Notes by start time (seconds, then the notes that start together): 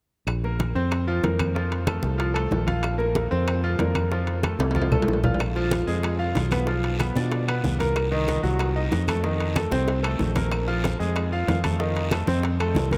0.27 A#1, high bongo, high conga, high timbale, claves
0.44 A#3 A#4, high bongo, high conga
0.59 high bongo, high conga, high timbale
0.75 F2 C4 C5, high bongo
0.91 high bongo, high conga, high timbale, claves
1.07 F3 F4, high conga
1.23 F2 A#3 A#4, high bongo, low bongo, high conga, high timbale, low timbale
1.39 high bongo, high conga, high timbale, claves
1.55 F3 F4, high bongo, high conga
1.72 high bongo, high conga, high timbale
1.87 A3 A4, high bongo, high conga, high timbale, claves
2.03 C2, high bongo, high conga
2.18 F3 F4, high bongo, high conga, high timbale
2.34 A3 A4, high conga, high timbale, claves
2.51 A#1, high bongo, low bongo, high conga, low timbale
2.67 F4 F5, high bongo, high conga, high timbale
2.83 high bongo, high conga, high timbale, claves
2.98 A#3 A#4, high bongo, high conga
3.15 high bongo, high conga, high timbale
3.31 F2 C4 C5, high bongo
3.47 high bongo, high conga, high timbale, claves
3.63 F3 F4, high conga
3.79 F2 A#3 A#4, high bongo, low bongo, high conga, high timbale, low timbale
3.95 high bongo, high conga, high timbale, claves
4.12 F3 F4, high bongo, high conga
4.27 high bongo, high conga, high timbale
4.43 A3 A4, high bongo, high conga, high timbale, claves
4.59 C2, high bongo, high conga, high timbale
4.71 high timbale
4.75 F3 F4, high bongo, high conga
4.82 high timbale
4.92 A3 A4, low conga, low timbale, claves
5.02 low timbale
5.08 A#1, high bongo, low bongo
5.13 low timbale
5.24 F4 F5, high bongo, low conga, low timbale
5.34 low timbale
5.39 high bongo, high conga, high timbale, long guiro, claves
5.56 F3 F4, high bongo, high conga
5.71 high bongo, high conga, high timbale, short guiro
5.87 F2 G#3 G#4, high bongo, short guiro
6.03 high bongo, high conga, high timbale, long guiro, claves
6.19 F4 F5, high conga
6.35 B1, high bongo, low bongo, high conga, high timbale, short guiro
6.51 B3 B4, high bongo, high conga, high timbale, short guiro, claves
6.67 F3 F4, high bongo, high conga, long guiro
6.83 high bongo, high conga, high timbale
6.99 B3 B4, high bongo, high conga, high timbale, short guiro, claves
7.15 B2 D4 D5, high bongo, high conga, short guiro
7.32 high bongo, high conga, high timbale, long guiro
7.48 B3 B4, high conga, high timbale, claves
7.63 C2, high bongo, low bongo, high conga, short guiro
7.79 A#3 A#4, high bongo, high conga, high timbale, short guiro
7.96 high bongo, high conga, high timbale, long guiro, claves
8.11 D#3 D#4, high bongo, high conga
8.28 high bongo, high conga, high timbale, short guiro
8.43 C2 F#3 F#4, high bongo, short guiro
8.59 high bongo, high conga, high timbale, long guiro, claves
8.76 D#4 D#5, high conga
8.91 F2, high bongo, low bongo, high conga, high timbale, short guiro
9.07 A3 A4, high bongo, high conga, high timbale, short guiro, claves
9.24 D#3 D#4, high bongo, high conga, long guiro
9.40 high bongo, high conga, high timbale
9.56 A3 A4, high bongo, high conga, high timbale, short guiro, claves
9.71 C2 C4 C5, high bongo, high conga, short guiro
9.88 high bongo, high conga, high timbale, long guiro
10.03 A3 A4, high conga, high timbale, claves
10.19 A#1, low bongo, high conga, short guiro
10.36 A#3 A#4, low bongo, high conga, high timbale, short guiro
10.52 high bongo, high conga, high timbale, long guiro, claves
10.68 F3 F4, high bongo, high conga
10.84 high bongo, high conga, high timbale, short guiro
10.99 F2 G#3 G#4, high bongo, short guiro
11.16 high bongo, high conga, high timbale, long guiro, claves
11.32 F4 F5, high conga
11.48 F2, high bongo, low bongo, high conga, high timbale, low timbale, short guiro
11.64 A3 A4, high bongo, high conga, high timbale, short guiro, claves
11.79 D#3 D#4, high bongo, high conga, long guiro
11.96 high bongo, high conga, high timbale
12.11 A3 A4, high bongo, high conga, high timbale, short guiro, claves
12.27 F2 C4 C5, high bongo, high conga, short guiro
12.43 high bongo, high conga, high timbale
12.59 A3 A4, high conga, high timbale, claves
12.75 C2, high bongo, low bongo, high conga, low timbale, short guiro
12.91 A#3 A#4, high bongo, high conga, high timbale, short guiro